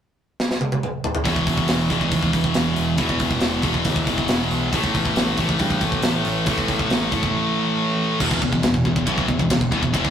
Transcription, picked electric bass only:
1.26 1.45 E1 medium
1.47 1.67 E1 medium
1.69 1.88 E1 loud
1.90 2.10 E1 medium
2.12 2.32 D#2 medium
2.34 2.53 E1 medium
2.56 2.75 E1 medium
2.78 2.97 E1 medium
2.98 3.18 E1 medium
3.20 3.40 E1 medium
3.42 3.62 E1 loud
3.63 3.83 E1 medium
3.85 4.05 D#2 medium
4.07 4.27 E1 medium
4.29 4.49 E1 loud
4.51 4.71 B1 medium
4.73 4.92 A1 medium
4.95 5.14 A1 medium
5.17 5.36 A1 medium
5.38 5.57 A1 medium
5.60 5.79 G2 medium
5.81 6.01 A1 medium
6.04 6.23 A1 medium
6.26 6.45 A1 loud
6.47 6.66 A1 medium
6.69 6.88 A1 medium
6.91 7.10 A1 loud
7.12 7.32 F#1 medium
8.20 8.39 E1 medium
8.42 8.60 E1 medium
8.63 8.82 E1 loud
8.85 9.04 E1 medium
9.07 9.25 B1 medium
9.29 9.47 E1 medium
9.51 9.69 E1 loud
9.72 9.91 E1 medium
9.94 10.10 E1 medium

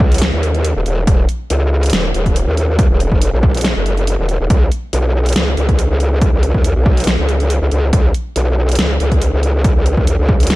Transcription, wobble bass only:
0.00 0.31 C#2 loud
0.33 0.74 D#2 loud
0.76 0.84 D#1 loud
0.86 1.06 D#1 loud
1.07 1.27 D#1 loud
1.50 1.91 C#2 loud
1.93 2.13 D#1 loud
2.14 2.45 D#1 loud
2.47 2.88 D#2 loud
2.90 3.10 D#1 medium
3.12 3.31 F1 loud
3.33 3.74 A#1 loud
3.76 4.17 F#1 loud
4.19 4.38 D#1 loud
4.40 4.48 D#1 medium
4.50 4.70 C#2 medium
4.93 5.34 B1 loud
5.36 5.56 C#2 loud
5.57 5.88 C#2 loud
5.90 6.31 C#2 loud
6.33 6.53 C#2 loud
6.54 6.74 D#2 medium
6.76 7.17 B1 loud
7.19 7.60 C#2 loud
7.61 7.70 C#2 loud
7.72 7.91 C#2 loud
7.93 8.13 C#2 loud
8.36 8.77 B1 medium
8.79 8.99 C#2 medium
9.00 9.31 C#2 loud
9.33 9.74 C#2 loud
9.76 9.95 C#2 loud
9.97 10.17 D#2 medium
10.19 10.49 C#2 loud
10.50 10.56 C#2 loud

